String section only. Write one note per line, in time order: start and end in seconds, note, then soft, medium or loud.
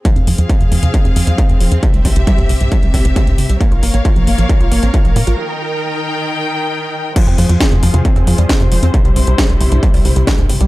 0.05 1.81 F3 medium
0.05 3.57 C4 medium
0.05 1.81 G#4 medium
0.05 1.81 F5 medium
1.83 3.59 C3 medium
1.83 3.59 G4 medium
1.83 3.59 E5 medium
3.61 5.37 A#3 medium
3.61 7.13 A#4 medium
3.61 5.37 C#5 medium
3.61 5.37 F5 medium
5.38 7.14 D#3 medium
5.38 7.14 D#4 medium
5.38 7.14 G5 medium
7.16 8.92 F3 medium
7.16 8.92 F4 medium
7.16 8.92 G#4 medium
7.16 10.67 C5 medium
8.94 10.67 C3 medium
8.94 10.67 G3 medium
8.94 10.67 E4 medium